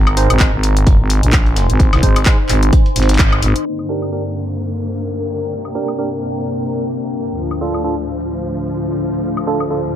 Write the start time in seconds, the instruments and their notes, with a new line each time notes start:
Already playing: fm bass G#1, ambient pad D#4 A#4 A#5
0.07 closed hi-hat, high woodblock
0.16 synth stab D#4 G#4 C5, ambient pad G#5, closed hi-hat, open hi-hat
0.28 fm bass G#1, ambient pad C5 C6, closed hi-hat, high woodblock
0.40 synth stab D#4 G#4 C5, kick, snare, clap, closed hi-hat
0.53 fm bass G#1
0.63 closed hi-hat, open hi-hat
0.77 closed hi-hat
0.87 kick, closed hi-hat
1.00 fm bass G#1
1.10 closed hi-hat, open hi-hat
1.23 fm bass A#1, closed hi-hat
1.33 kick, snare, clap, closed hi-hat
1.46 closed hi-hat
1.56 snare, closed hi-hat, open hi-hat
1.70 fm bass G#1, closed hi-hat
1.80 kick, closed hi-hat
1.93 fm bass C2, snare, closed hi-hat, high woodblock
2.03 fm bass G#1, synth stab D#4 G#4 C5, kick, open hi-hat
2.16 closed hi-hat, high woodblock
2.26 synth stab D#4 G#4 C5, kick, snare, clap, closed hi-hat
2.49 fm bass G#1, clap, closed hi-hat, open hi-hat
2.63 closed hi-hat
2.73 kick, closed hi-hat
2.86 closed hi-hat
2.96 fm bass G#1, snare, closed hi-hat, open hi-hat
3.03 snare, closed hi-hat
3.09 snare, closed hi-hat
3.14 snare, closed hi-hat
3.19 kick, snare, clap, closed hi-hat
3.32 high woodblock
3.42 fm bass G#1, snare, closed hi-hat, open hi-hat
3.56 closed hi-hat
3.66 string section G2 D3 A#3, ambient pad D4, downlifter
3.79 high woodblock
3.89 synth stab D4 G4 A#4
4.02 closed hi-hat, high woodblock
4.06 ambient pad A#4
4.12 synth stab D4 G4 A#4, ambient pad G5, closed hi-hat
4.49 closed hi-hat
4.59 closed hi-hat
4.95 closed hi-hat
5.05 closed hi-hat
5.34 ambient pad A#5
5.42 closed hi-hat
5.52 string section C3, closed hi-hat
5.65 high woodblock
5.75 synth stab D4 G4 A#4
5.88 closed hi-hat, high woodblock
5.98 synth stab D4 G4 A#4, closed hi-hat
6.35 closed hi-hat
6.45 closed hi-hat
6.81 closed hi-hat
6.91 closed hi-hat
7.28 closed hi-hat
7.38 string section D2 A2 F3, closed hi-hat
7.51 high woodblock
7.56 ambient pad A4
7.61 synth stab D4 F4 A4
7.74 closed hi-hat, high woodblock
7.84 synth stab D4 F4 A4, closed hi-hat
8.06 ambient pad F5
8.21 closed hi-hat
8.31 closed hi-hat
8.67 closed hi-hat
8.77 closed hi-hat
8.93 ambient pad A5
9.14 closed hi-hat
9.24 closed hi-hat
9.37 high woodblock
9.47 synth stab D4 F4 A4
9.60 closed hi-hat, high woodblock
9.70 synth stab D4 F4 A4, closed hi-hat